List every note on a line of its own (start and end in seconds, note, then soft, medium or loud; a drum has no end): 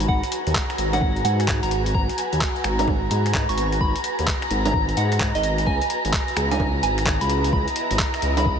0.00 6.81 F#4 medium
0.00 8.59 B4 medium
0.00 7.06 G#5 medium
0.00 8.59 A#5 medium
0.00 closed hi-hat medium
0.08 0.22 G#1 loud
0.08 0.29 F#5 loud
0.08 kick loud
0.23 closed hi-hat medium
0.32 closed hi-hat loud
0.47 0.54 D#2 medium
0.47 closed hi-hat medium
0.55 kick loud
0.55 clap loud
0.70 finger snap soft
0.70 closed hi-hat soft
0.78 1.23 G#1 medium
0.78 closed hi-hat loud
0.93 1.12 F#5 medium
0.93 closed hi-hat medium
0.93 high bongo medium
1.02 kick loud
1.16 closed hi-hat soft
1.24 1.60 G#2 loud
1.24 1.45 F#5 medium
1.24 closed hi-hat loud
1.40 finger snap soft
1.40 closed hi-hat medium
1.48 kick loud
1.48 clap loud
1.63 1.93 G#1 loud
1.63 1.81 A#5 medium
1.63 closed hi-hat medium
1.71 closed hi-hat medium
1.86 closed hi-hat medium
1.94 2.08 G#1 loud
1.94 2.15 A#5 loud
1.94 kick loud
2.09 closed hi-hat medium
2.18 closed hi-hat loud
2.33 2.40 D#2 medium
2.33 closed hi-hat medium
2.41 kick loud
2.41 clap loud
2.56 closed hi-hat soft
2.64 3.10 G#1 medium
2.64 finger snap medium
2.64 closed hi-hat medium
2.79 2.98 A#5 medium
2.79 closed hi-hat medium
2.79 high bongo medium
2.88 kick loud
2.88 high bongo medium
3.11 3.47 G#2 loud
3.11 3.31 A#5 medium
3.11 closed hi-hat loud
3.26 finger snap soft
3.26 closed hi-hat medium
3.34 kick loud
3.34 clap loud
3.49 3.79 G#1 loud
3.49 3.68 C#6 loud
3.49 closed hi-hat medium
3.58 closed hi-hat medium
3.72 closed hi-hat medium
3.81 3.94 G#1 loud
3.81 4.01 B5 loud
3.81 kick loud
3.96 closed hi-hat medium
4.04 closed hi-hat loud
4.19 4.26 D#2 medium
4.19 closed hi-hat medium
4.27 kick loud
4.27 clap loud
4.42 finger snap soft
4.42 closed hi-hat soft
4.50 4.96 G#1 medium
4.50 closed hi-hat medium
4.65 4.84 A#5 loud
4.65 closed hi-hat medium
4.65 high bongo medium
4.74 kick loud
4.89 closed hi-hat soft
4.97 5.33 G#2 loud
4.97 5.18 F#5 medium
4.97 closed hi-hat loud
5.12 finger snap soft
5.12 closed hi-hat medium
5.20 kick loud
5.20 clap loud
5.35 5.65 G#1 loud
5.35 5.54 D#5 medium
5.35 closed hi-hat medium
5.43 closed hi-hat medium
5.58 closed hi-hat medium
5.66 5.80 C#2 loud
5.66 8.59 E4 medium
5.66 5.87 G#5 loud
5.66 kick loud
5.82 closed hi-hat medium
5.90 closed hi-hat loud
6.05 6.12 G#1 medium
6.05 closed hi-hat medium
6.13 kick loud
6.13 clap loud
6.28 8.59 D#5 medium
6.28 closed hi-hat soft
6.36 6.82 C#2 medium
6.36 finger snap medium
6.36 closed hi-hat medium
6.51 6.70 G#5 medium
6.51 closed hi-hat medium
6.51 high bongo medium
6.60 kick loud
6.60 high bongo medium
6.65 8.59 F#5 medium
6.83 7.19 G#1 loud
6.83 7.04 G#5 medium
6.83 closed hi-hat loud
6.98 finger snap soft
6.98 closed hi-hat medium
7.06 kick loud
7.06 clap loud
7.21 7.51 C#2 loud
7.21 7.40 B5 medium
7.21 closed hi-hat medium
7.30 closed hi-hat medium
7.44 closed hi-hat medium
7.53 7.66 C#2 loud
7.53 7.73 B5 loud
7.53 kick loud
7.68 closed hi-hat medium
7.76 closed hi-hat loud
7.91 7.98 G#1 medium
7.91 closed hi-hat medium
7.99 kick loud
7.99 clap loud
8.14 finger snap soft
8.14 closed hi-hat soft
8.22 8.59 C#2 medium
8.22 closed hi-hat medium
8.37 8.56 B5 medium
8.37 closed hi-hat medium
8.37 high bongo medium
8.46 kick loud